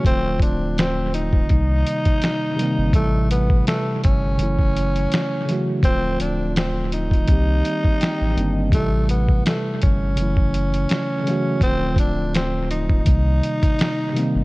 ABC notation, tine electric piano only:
X:1
M:4/4
L:1/16
Q:"Swing 16ths" 1/4=83
K:Dlyd
V:1 name="Tine electric piano"
z16 | z16 | z12 =g2 _e2 | z16 |
z16 |]
V:2 name="Tine electric piano" clef=bass
[D,=F,A,=C=F]6 z2 [=C,_E,=G,_B,_E]4- [C,E,G,B,E] z [C,E,G,B,C]2 | [=C,E,=G,A,E]6 z2 [^C,E,F,A,E]4- [C,E,F,A,E] z [C,E,F,A,F]2 | [D,=F,A,=C=F]6 z2 [_E,=G,_B,C=G]4- [E,G,B,CG] z [E,G,B,CD]2 | [=C,E,=G,A,E]6 z2 [^C,E,F,A,E]4- [C,E,F,A,E] z [C,E,F,A,F]2 |
[D,=F,A,=C=F]6 z2 [=C,_E,=G,_B,_E]4- [C,E,G,B,E] z [C,E,G,B,C]2 |]